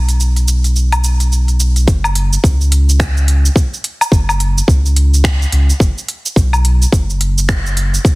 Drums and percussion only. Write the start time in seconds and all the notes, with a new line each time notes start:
0.09 open hi-hat, shaker
0.20 shaker
0.36 open hi-hat, shaker
0.48 shaker
0.64 open hi-hat, shaker
0.76 shaker
0.92 open hi-hat, low woodblock, shaker
1.04 shaker
1.20 open hi-hat, shaker
1.32 shaker
1.48 open hi-hat, shaker
1.60 shaker
1.76 open hi-hat, shaker
1.88 kick, shaker
2.04 low woodblock, shaker
2.15 open hi-hat
2.33 shaker
2.44 kick, shaker
2.61 shaker
2.72 open hi-hat
2.89 shaker
3.00 finger snap, kick, shaker
3.17 shaker
3.28 open hi-hat
3.46 shaker
3.56 kick, shaker
3.74 shaker
3.84 open hi-hat
4.01 low woodblock, shaker
4.12 kick, shaker
4.29 low woodblock, shaker
4.40 open hi-hat
4.58 shaker
4.68 kick, shaker
4.86 shaker
4.96 open hi-hat
5.14 shaker
5.24 finger snap, kick, shaker
5.42 shaker
5.52 open hi-hat
5.70 shaker
5.80 kick, shaker
5.98 shaker
6.08 open hi-hat
6.26 shaker
6.36 kick, shaker
6.53 low woodblock, shaker
6.65 open hi-hat
6.82 shaker
6.92 kick, shaker
7.10 shaker
7.21 open hi-hat
7.38 shaker
7.49 finger snap, kick, shaker
7.66 shaker
7.77 open hi-hat
7.94 shaker
8.05 kick, shaker